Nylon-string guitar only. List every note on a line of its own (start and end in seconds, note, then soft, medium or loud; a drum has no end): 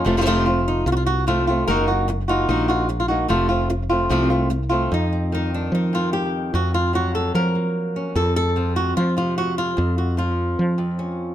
0.00 0.26 D#4 medium
0.05 0.25 C3 medium
0.05 0.16 F3 medium
0.05 0.16 A3 medium
0.05 0.17 C4 medium
0.05 0.17 F4 medium
0.17 0.20 F3 soft
0.17 0.21 A3 soft
0.17 0.21 C4 medium
0.17 0.22 F4 medium
0.21 0.25 F3 medium
0.21 0.26 A3 medium
0.21 0.26 C4 medium
0.21 0.26 F4 medium
0.26 0.45 C3 medium
0.26 0.46 F3 medium
0.26 0.46 A3 medium
0.26 0.46 C4 medium
0.26 0.47 D#4 medium
0.26 0.45 F4 medium
0.46 0.86 A3 soft
0.46 0.67 C4 soft
0.46 0.86 F4 soft
0.68 0.87 D#4 medium
0.87 0.92 F4 medium
0.87 muted nylon-string guitar stroke medium
0.92 0.96 F#4 medium
0.97 1.06 F4 medium
1.06 1.26 F#4 medium
1.27 1.46 F3 soft
1.27 1.47 A3 medium
1.27 1.47 C4 medium
1.27 1.46 F4 medium
1.47 1.68 A3 soft
1.47 1.68 C4 soft
1.47 1.67 F4 medium
1.68 1.88 D#3 medium
1.68 1.88 A#3 medium
1.68 1.88 D#4 medium
1.68 1.86 F#4 medium
1.68 1.86 A#4 medium
1.88 2.07 A#3 soft
1.88 2.08 D#4 soft
1.88 2.07 F#4 medium
2.08 muted nylon-string guitar stroke medium
2.28 2.48 A#3 soft
2.28 2.48 D#4 soft
2.28 2.68 F4 medium
2.28 2.48 F#4 soft
2.49 2.68 D#3 medium
2.49 2.68 A#3 medium
2.49 2.68 D#4 medium
2.49 2.67 F#4 medium
2.68 2.88 A#3 soft
2.68 2.88 D#4 soft
2.68 2.88 F4 medium
2.68 2.88 F#4 soft
2.89 muted nylon-string guitar stroke medium
3.00 3.08 F4 medium
3.08 3.29 A#3 soft
3.08 3.29 D#4 soft
3.08 3.28 F#4 medium
3.28 3.48 C3 medium
3.28 3.49 F3 medium
3.28 3.49 A3 medium
3.28 3.49 C4 medium
3.28 3.48 F4 medium
3.49 3.69 A3 soft
3.49 3.69 C4 soft
3.49 3.69 F4 medium
3.70 muted nylon-string guitar stroke medium
3.90 4.10 A3 soft
3.90 4.10 C4 soft
3.90 4.09 F4 medium
4.10 4.30 C3 medium
4.10 4.30 F3 medium
4.10 4.30 A3 medium
4.10 4.30 C4 medium
4.10 4.29 F4 medium
4.30 4.49 A3 soft
4.30 4.49 C4 soft
4.30 4.50 F4 soft
4.50 muted nylon-string guitar stroke soft
4.69 4.91 A3 soft
4.69 4.91 C4 soft
4.69 4.90 F4 soft
4.92 5.92 F2 medium
4.92 5.33 D#4 medium
5.13 6.52 C4 soft
5.32 6.54 D#3 medium
5.32 5.54 D#4 medium
5.54 5.74 D4 medium
5.75 6.34 D#4 medium
5.93 6.53 F2 soft
5.93 6.13 F4 medium
6.13 6.54 G4 medium
6.54 7.55 F2 medium
6.54 6.74 F#4 medium
6.74 6.94 F4 medium
6.93 8.13 F#3 soft
6.93 7.14 F#4 medium
7.15 7.35 A4 medium
7.35 8.16 A#4 medium
7.55 8.13 A#3 soft
7.96 8.13 C#4 soft
8.15 9.76 F2 medium
8.15 8.35 A4 medium
8.36 8.76 A4 medium
8.56 9.75 F3 medium
8.56 9.78 C4 soft
8.76 8.96 F#4 medium
8.97 9.16 F4 medium
9.17 9.75 C3 medium
9.17 9.37 F4 medium
9.38 9.58 F#4 medium
9.58 9.98 F4 medium
9.77 10.77 F2 medium
9.98 10.18 F#4 medium
10.17 11.35 F3 medium
10.17 11.35 F4 medium
10.78 11.35 F2 soft
10.99 11.35 C#4 soft